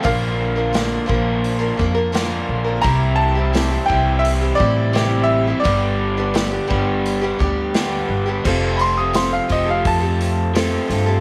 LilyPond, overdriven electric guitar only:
\new Staff \with { instrumentName = "Overdriven electric guitar" } { \time 4/4 \key f \major \tempo 4 = 86 <bes, d bes d' f'>4. <bes, d bes d' f'>4. <bes, d bes d' f'>4 | <c e g c' e'>4. <c e g c' e'>4. <c e g c' e'>4 | <g, d g b d' g'>4. <g, d g b d' g'>4. <g, d g b d' g'>4 | <f a c' f'>4. <f a c' f'>4. <f a c' f'>4 | }